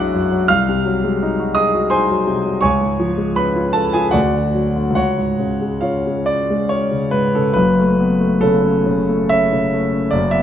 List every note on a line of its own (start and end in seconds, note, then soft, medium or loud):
0.00 0.43 B1 medium
0.00 0.14 F#2 medium
0.00 0.31 F#3 medium
0.00 0.49 G#3 medium
0.00 0.49 D4 medium
0.00 0.49 F#4 medium
0.00 0.49 G#4 medium
0.00 0.49 D5 medium
0.00 0.48 E5 medium
0.00 0.43 F#5 medium
0.00 0.49 B5 medium
0.00 0.48 D6 loud
0.00 0.48 E6 loud
0.00 0.47 F#6 loud
0.14 0.41 F#2 medium
0.31 0.48 F#3 medium
0.48 2.61 C2 medium
0.48 1.52 F5 medium
0.48 1.56 F6 loud
0.69 0.96 C3 medium
0.86 1.13 F#3 medium
1.04 1.32 G#3 medium
1.23 1.50 D#4 medium
1.39 1.67 F#4 medium
1.55 1.84 G#4 medium
1.55 1.88 D#5 medium
1.55 1.90 D#6 loud
1.74 2.02 F#4 medium
1.90 2.20 D#4 medium
1.90 2.59 C5 medium
1.90 2.59 G#5 medium
1.90 2.63 C6 loud
2.10 2.39 F#3 medium
2.27 2.56 C3 medium
2.45 2.63 F#3 medium
2.61 4.11 C#2 medium
2.61 3.33 C#5 medium
2.61 3.33 G#5 medium
2.61 3.36 C#6 loud
2.81 3.11 G#2 soft
3.00 3.30 F3 medium
3.18 3.48 G#3 medium
3.36 3.68 C#4 medium
3.36 3.73 B4 medium
3.36 3.75 B5 medium
3.56 3.87 F4 medium
3.73 4.07 C#4 medium
3.73 3.93 A4 medium
3.73 3.94 A5 medium
3.93 4.15 F4 medium
3.93 4.13 G#4 medium
3.93 4.14 G#5 medium
4.11 4.93 D2 medium
4.11 4.91 F#4 medium
4.11 4.91 D5 medium
4.11 4.94 F#5 medium
4.33 4.67 D3 soft
4.55 4.88 F#3 medium
4.76 4.96 D3 soft
4.90 7.48 C#2 medium
4.95 5.77 F#4 medium
4.95 5.77 C#5 medium
4.95 5.81 F#5 medium
5.18 5.51 G#2 soft
5.39 5.73 C#3 soft
5.61 5.96 G#3 soft
5.81 6.18 C#4 soft
5.81 7.08 F4 soft
5.81 6.68 C#5 soft
5.81 7.11 F5 medium
6.07 6.41 G#3 soft
6.26 6.62 C#4 soft
6.26 6.69 D5 medium
6.50 6.83 G#3 medium
6.69 7.04 C#4 medium
6.69 7.12 C#5 medium
6.92 7.25 C#3 soft
7.11 7.47 G#2 soft
7.11 7.33 B4 medium
7.35 7.56 C#3 soft
7.35 7.56 A4 medium
7.54 10.09 F#1 medium
7.54 10.10 F#2 medium
7.54 8.41 B4 medium
7.79 8.12 A3 medium
7.99 8.20 B3 soft
8.20 8.55 A3 soft
8.41 8.77 C#3 medium
8.41 9.30 A4 medium
8.64 9.00 C#4 medium
8.86 9.22 C#3 medium
9.09 9.44 A3 medium
9.29 9.65 C#4 medium
9.29 10.13 E5 loud
9.53 9.85 C#3 medium
9.74 10.06 A3 medium
9.93 10.13 C#4 medium
10.11 10.43 F#1 medium
10.11 10.43 F#2 medium
10.11 10.32 D5 medium
10.31 10.43 B3 medium
10.31 10.43 E5 medium